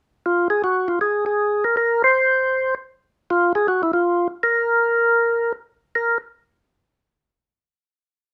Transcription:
0.26 F4
0.50 G#4
0.64 F#4
0.88 F4
1.01 G#4
1.26 G#4
1.64 A#4
1.77 A#4
2.04 C5
3.30 F4
3.55 G#4
3.68 F#4
3.83 E4
3.93 F4
4.43 A#4
5.95 A#4

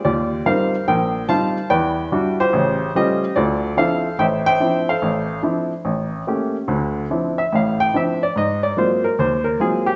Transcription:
0.05 D#2 F4 G4 D5
0.46 G3 C4 D#4 F4 A#4 C5 F5
0.88 A#1 A#4 C5 G5
1.28 G3 C4 D#4 F4 C5 F5 A5
1.70 E2 E3 B4 D5 G5
2.12 G3 D4 E4 F#4
2.40 F4 G4 C5
2.53 A1 C#3
2.95 G3 A3 C#4 F4 G4 C5 D#5
3.36 D2 F4 A4 D5
3.77 F3 C4 D4 E4 A4 C5 F5
4.19 A1 C5 E5 G5
4.46 C5 E5 G5
4.60 F3 C4 D4 E4
4.89 A4 C5 F5
5.02 A1
5.43 F3 C4 D4 E4
5.85 A1
6.27 A3 A#3 C#4 G4
6.68 D2 D3
7.10 F3 C4 D4 E4
7.38 E5
7.52 A1 A2 F5
7.80 G5
7.94 F3 C4 D4 E4 E5
8.23 D5
8.36 G#2 D#5
8.63 D5
8.77 F#3 G#3 A#3 C4 F4 C5
9.04 A#4
9.19 D#2 C5
9.44 A#4
9.60 F#3 G#3 A#3 C4 F4 G#4
9.86 G4

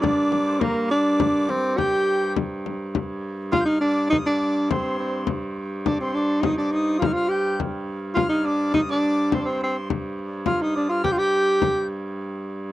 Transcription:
Already playing: G2 A#4 C5
0.02 D4 D5 D6, frame drum
0.32 frame drum
0.47 C5
0.60 A#3 A#4 A#5, frame drum
0.90 D4 D5 D6
1.20 frame drum
1.49 C4, frame drum
1.77 G4 G5 G6, frame drum
2.36 frame drum
2.66 frame drum
2.94 G2, frame drum
3.52 F4 F5 F6, frame drum
3.61 G6
3.66 D#4 F6
3.81 D4 D5, frame drum
3.85 D6
4.10 D#4 D#5 D#6, frame drum
4.25 D4 D5 D6
4.42 frame drum
4.70 C4 C5 C6, frame drum
4.99 C4 C5, frame drum
5.27 frame drum
5.57 frame drum
5.85 D4 D5 D6 D#6, frame drum
6.01 C4 C5 C6
6.14 D4 D5, frame drum
6.41 D#4 D#5 D#6, frame drum
6.58 D4 D5 D6
6.71 D#4 D#6, frame drum
6.99 F4 F5 F6, frame drum
7.06 D#4
7.13 F4 F6
7.28 G4 G5 G6
7.60 G2, frame drum
7.89 frame drum
8.15 F4 F5 F6, frame drum
8.29 D#4 D#5
8.45 D4 D5 D6, frame drum
8.74 D#4 D#5 D#6, frame drum
8.89 D4 D5 D6
9.03 frame drum
9.32 C4 C5 C6, frame drum
9.37 D4
9.45 C4 C6
9.61 C4 C5 C6, frame drum
9.90 frame drum
10.18 frame drum
10.46 F4 F5 F6, frame drum
10.62 D#4 D#6
10.75 D4 D5, frame drum
10.89 F4 F6
11.04 G4 G5 G6, frame drum
11.12 F4
11.17 G4 G5 G6
11.33 frame drum
11.62 frame drum
12.21 G2

